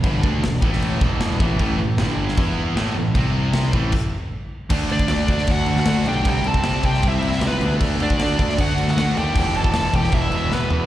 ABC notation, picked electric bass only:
X:1
M:4/4
L:1/8
Q:1/4=155
K:Dmix
V:1 name="Picked electric bass" clef=bass
G,,, D,, E,,, A,,,2 E,,,2 A,,, | A,,, A,,, G,,,2 E,,2 A,,, A,,, | C,,3 A,,, z4 | D,, D,, D,, D,, D,,2 D,, B,,, |
C,, C,, C,, C,, C,, C,, ^C,, D,, | D,, D,, D,, D,, D,,2 D,, ^D,, | E,,, E,,, E,,, E,,, E,,, E,,, E,,, E,, |]